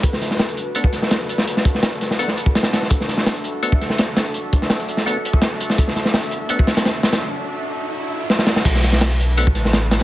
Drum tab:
CC |----------------|----------------|----------------|----------------|
HH |x-x-xxx-x-x-x-x-|x-x-xxx-x-x-xxx-|x-x-xxx-x-x-x-xx|x-x-xxx-x-x-x-x-|
SD |-oooo-----ooo--o|-o-oo-oo-o--oooo|-oooo-----ooo-o-|---oo--o----o--o|
BD |o--------o------|--o--------o----|o--------o------|--o--------o----|

CC |----------------|----------------|x---------------|
HH |x-x-xxx-x-xxx-xx|----------------|x-x-xxx-x-x-x-xx|
SD |-oooo-----ooo-oo|------------oooo|-oooo-----ooo-o-|
BD |o--------o------|----------------|o--------o------|